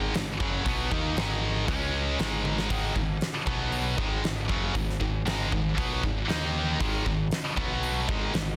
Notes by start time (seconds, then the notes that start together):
Already playing: G#1 G#2 D#3 G#3
0.14 G#1 G#2 D#3, snare, open hi-hat
0.40 F#1 F#2 C#3 F#3, kick
0.65 B1 B2 F#3 B3, kick, open hi-hat
0.91 D#2 D#3 A#3 D#4, kick
1.17 G#1 G#2 D#3 G#3, snare, open hi-hat
1.67 C#2 C#3 G#3 C#4, kick, open hi-hat
2.18 G#1 G#2 D#3 G#3, snare, open hi-hat
2.45 high tom
2.58 snare
2.69 G#1 G#2 D#3 G#3, kick, open hi-hat, crash
2.95 G#1 G#2 D#3, kick
3.21 snare, open hi-hat
3.46 B1 B2 F#3 B3, kick
3.72 open hi-hat
3.97 G#1 G#2 D#3 G#3, kick
4.23 G#1 G#2 D#3, snare, open hi-hat
4.48 F#1 F#2 C#3 F#3, kick
4.75 G#1 G#2 D#3, kick, open hi-hat
4.90 snare
5.00 G#1 G#2 D#3, kick
5.26 G#1 G#2 D#3 G#3, snare, open hi-hat
5.52 G#1 G#2 D#3, kick
5.77 B1 B2 F#3 B3, kick, open hi-hat
6.02 G#1 G#2 D#3, kick
6.28 D#2 D#3 A#3 D#4, snare, open hi-hat
6.79 G#1 G#2 D#3 G#3, kick, open hi-hat
7.06 G#1 G#2 D#3, kick
7.31 snare, open hi-hat
7.57 B1 B2 F#3 B3, kick
7.83 open hi-hat
8.08 G#1 G#2 D#3 G#3, kick
8.33 G#1 G#2 D#3, snare, open hi-hat